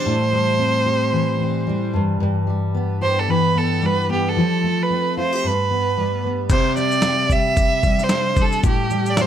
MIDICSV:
0, 0, Header, 1, 4, 480
1, 0, Start_track
1, 0, Key_signature, 0, "major"
1, 0, Tempo, 536193
1, 51, Time_signature, 4, 2, 24, 8
1, 8296, End_track
2, 0, Start_track
2, 0, Title_t, "Violin"
2, 0, Program_c, 0, 40
2, 0, Note_on_c, 0, 72, 83
2, 1748, Note_off_c, 0, 72, 0
2, 2708, Note_on_c, 0, 72, 81
2, 2856, Note_on_c, 0, 69, 72
2, 2870, Note_off_c, 0, 72, 0
2, 2957, Note_on_c, 0, 71, 82
2, 2971, Note_off_c, 0, 69, 0
2, 3204, Note_on_c, 0, 69, 76
2, 3217, Note_off_c, 0, 71, 0
2, 3458, Note_on_c, 0, 71, 83
2, 3471, Note_off_c, 0, 69, 0
2, 3676, Note_off_c, 0, 71, 0
2, 3692, Note_on_c, 0, 67, 72
2, 3842, Note_on_c, 0, 69, 76
2, 3855, Note_off_c, 0, 67, 0
2, 4324, Note_on_c, 0, 71, 73
2, 4337, Note_off_c, 0, 69, 0
2, 4637, Note_off_c, 0, 71, 0
2, 4653, Note_on_c, 0, 72, 72
2, 4898, Note_on_c, 0, 71, 74
2, 4911, Note_off_c, 0, 72, 0
2, 5596, Note_off_c, 0, 71, 0
2, 5833, Note_on_c, 0, 72, 86
2, 6047, Note_off_c, 0, 72, 0
2, 6071, Note_on_c, 0, 74, 93
2, 6556, Note_on_c, 0, 76, 92
2, 6569, Note_off_c, 0, 74, 0
2, 7193, Note_on_c, 0, 72, 88
2, 7206, Note_off_c, 0, 76, 0
2, 7532, Note_on_c, 0, 69, 87
2, 7545, Note_off_c, 0, 72, 0
2, 7752, Note_off_c, 0, 69, 0
2, 7761, Note_on_c, 0, 67, 78
2, 8145, Note_on_c, 0, 74, 83
2, 8159, Note_off_c, 0, 67, 0
2, 8251, Note_on_c, 0, 72, 75
2, 8264, Note_off_c, 0, 74, 0
2, 8296, Note_off_c, 0, 72, 0
2, 8296, End_track
3, 0, Start_track
3, 0, Title_t, "Steel-string acoustic guitar"
3, 0, Program_c, 1, 25
3, 0, Note_on_c, 1, 52, 52
3, 0, Note_on_c, 1, 55, 50
3, 0, Note_on_c, 1, 62, 43
3, 0, Note_on_c, 1, 67, 56
3, 49, Note_on_c, 1, 45, 68
3, 106, Note_off_c, 1, 62, 0
3, 285, Note_off_c, 1, 55, 0
3, 288, Note_on_c, 1, 55, 45
3, 525, Note_on_c, 1, 60, 51
3, 765, Note_off_c, 1, 67, 0
3, 769, Note_on_c, 1, 67, 53
3, 1004, Note_off_c, 1, 52, 0
3, 1008, Note_on_c, 1, 52, 56
3, 1245, Note_off_c, 1, 60, 0
3, 1256, Note_on_c, 1, 60, 50
3, 1490, Note_off_c, 1, 55, 0
3, 1494, Note_on_c, 1, 55, 52
3, 1732, Note_off_c, 1, 45, 0
3, 1733, Note_on_c, 1, 43, 66
3, 1792, Note_off_c, 1, 60, 0
3, 1961, Note_off_c, 1, 43, 0
3, 1972, Note_on_c, 1, 43, 73
3, 2207, Note_off_c, 1, 55, 0
3, 2211, Note_on_c, 1, 55, 47
3, 2457, Note_on_c, 1, 59, 54
3, 2696, Note_off_c, 1, 67, 0
3, 2700, Note_on_c, 1, 67, 55
3, 2934, Note_off_c, 1, 52, 0
3, 2938, Note_on_c, 1, 52, 54
3, 3166, Note_off_c, 1, 59, 0
3, 3177, Note_on_c, 1, 59, 47
3, 3418, Note_off_c, 1, 55, 0
3, 3422, Note_on_c, 1, 55, 51
3, 3655, Note_off_c, 1, 59, 0
3, 3664, Note_on_c, 1, 59, 50
3, 3894, Note_off_c, 1, 43, 0
3, 3896, Note_off_c, 1, 52, 0
3, 3907, Note_on_c, 1, 53, 68
3, 3957, Note_off_c, 1, 59, 0
3, 4146, Note_off_c, 1, 55, 0
3, 4150, Note_on_c, 1, 57, 46
3, 4176, Note_off_c, 1, 67, 0
3, 4385, Note_on_c, 1, 60, 49
3, 4629, Note_on_c, 1, 65, 53
3, 4767, Note_off_c, 1, 65, 0
3, 4767, Note_on_c, 1, 67, 43
3, 4865, Note_on_c, 1, 43, 58
3, 4916, Note_off_c, 1, 67, 0
3, 4917, Note_off_c, 1, 60, 0
3, 4918, Note_off_c, 1, 53, 0
3, 4919, Note_off_c, 1, 57, 0
3, 5106, Note_on_c, 1, 59, 47
3, 5346, Note_on_c, 1, 55, 51
3, 5575, Note_off_c, 1, 59, 0
3, 5586, Note_on_c, 1, 59, 46
3, 5821, Note_on_c, 1, 48, 75
3, 5827, Note_on_c, 1, 67, 59
3, 5877, Note_off_c, 1, 43, 0
3, 5878, Note_off_c, 1, 59, 0
3, 6054, Note_off_c, 1, 55, 0
3, 6057, Note_on_c, 1, 55, 51
3, 6294, Note_off_c, 1, 67, 0
3, 6297, Note_on_c, 1, 67, 61
3, 6530, Note_off_c, 1, 55, 0
3, 6533, Note_on_c, 1, 55, 53
3, 6765, Note_off_c, 1, 67, 0
3, 6768, Note_on_c, 1, 67, 56
3, 7011, Note_off_c, 1, 55, 0
3, 7014, Note_on_c, 1, 55, 55
3, 7254, Note_on_c, 1, 62, 53
3, 7489, Note_off_c, 1, 55, 0
3, 7493, Note_on_c, 1, 55, 52
3, 7722, Note_off_c, 1, 48, 0
3, 7726, Note_on_c, 1, 45, 78
3, 7729, Note_off_c, 1, 67, 0
3, 7733, Note_on_c, 1, 67, 65
3, 7790, Note_off_c, 1, 62, 0
3, 7969, Note_off_c, 1, 55, 0
3, 7973, Note_on_c, 1, 55, 51
3, 8211, Note_off_c, 1, 67, 0
3, 8215, Note_on_c, 1, 67, 60
3, 8296, Note_off_c, 1, 45, 0
3, 8296, Note_off_c, 1, 55, 0
3, 8296, Note_off_c, 1, 67, 0
3, 8296, End_track
4, 0, Start_track
4, 0, Title_t, "Drums"
4, 5815, Note_on_c, 9, 36, 104
4, 5815, Note_on_c, 9, 49, 77
4, 5816, Note_on_c, 9, 82, 69
4, 5905, Note_off_c, 9, 36, 0
4, 5905, Note_off_c, 9, 49, 0
4, 5905, Note_off_c, 9, 82, 0
4, 6056, Note_on_c, 9, 82, 47
4, 6145, Note_off_c, 9, 82, 0
4, 6190, Note_on_c, 9, 82, 47
4, 6280, Note_off_c, 9, 82, 0
4, 6283, Note_on_c, 9, 38, 91
4, 6287, Note_on_c, 9, 82, 61
4, 6373, Note_off_c, 9, 38, 0
4, 6377, Note_off_c, 9, 82, 0
4, 6532, Note_on_c, 9, 36, 77
4, 6537, Note_on_c, 9, 82, 50
4, 6621, Note_off_c, 9, 36, 0
4, 6627, Note_off_c, 9, 82, 0
4, 6774, Note_on_c, 9, 82, 59
4, 6775, Note_on_c, 9, 36, 84
4, 6863, Note_off_c, 9, 82, 0
4, 6865, Note_off_c, 9, 36, 0
4, 7009, Note_on_c, 9, 82, 43
4, 7012, Note_on_c, 9, 36, 79
4, 7099, Note_off_c, 9, 82, 0
4, 7102, Note_off_c, 9, 36, 0
4, 7154, Note_on_c, 9, 38, 27
4, 7154, Note_on_c, 9, 82, 48
4, 7243, Note_off_c, 9, 82, 0
4, 7244, Note_off_c, 9, 38, 0
4, 7244, Note_on_c, 9, 82, 67
4, 7245, Note_on_c, 9, 38, 93
4, 7333, Note_off_c, 9, 82, 0
4, 7334, Note_off_c, 9, 38, 0
4, 7486, Note_on_c, 9, 82, 48
4, 7489, Note_on_c, 9, 36, 77
4, 7575, Note_off_c, 9, 82, 0
4, 7579, Note_off_c, 9, 36, 0
4, 7630, Note_on_c, 9, 82, 47
4, 7719, Note_off_c, 9, 82, 0
4, 7727, Note_on_c, 9, 82, 67
4, 7731, Note_on_c, 9, 36, 103
4, 7817, Note_off_c, 9, 82, 0
4, 7820, Note_off_c, 9, 36, 0
4, 7971, Note_on_c, 9, 82, 45
4, 8061, Note_off_c, 9, 82, 0
4, 8110, Note_on_c, 9, 82, 44
4, 8200, Note_off_c, 9, 82, 0
4, 8209, Note_on_c, 9, 38, 96
4, 8213, Note_on_c, 9, 82, 59
4, 8296, Note_off_c, 9, 38, 0
4, 8296, Note_off_c, 9, 82, 0
4, 8296, End_track
0, 0, End_of_file